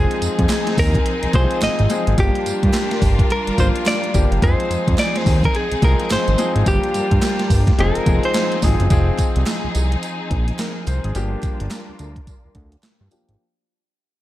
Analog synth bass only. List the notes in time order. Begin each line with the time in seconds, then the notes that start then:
0.22 F2
0.39 F2
0.78 D#2
1.23 C2
1.34 C2
1.62 G#1
1.80 G#1
2.07 G#1
2.18 G1
2.46 G2
2.63 G2
3.02 G1
3.48 G1
3.58 G1
4.15 G1
4.31 F#1
4.42 F1
4.70 F2
4.88 F2
5.26 D#2
5.71 C2
5.82 C2
6.11 G#1
6.28 G#1
6.56 G#1
6.66 G1
6.95 G2
7.12 G2
7.50 G1
7.79 F1
7.96 F1
8.07 F1
8.63 G#1
8.80 F#1
8.91 F1
9.36 C2
9.64 C2
9.75 C2
10.31 A#1
10.87 C2
11.04 G#1
11.15 G1
11.61 G1
11.89 D2
12.00 D2
12.45 D2
12.55 D2
13.01 G2
13.29 G#1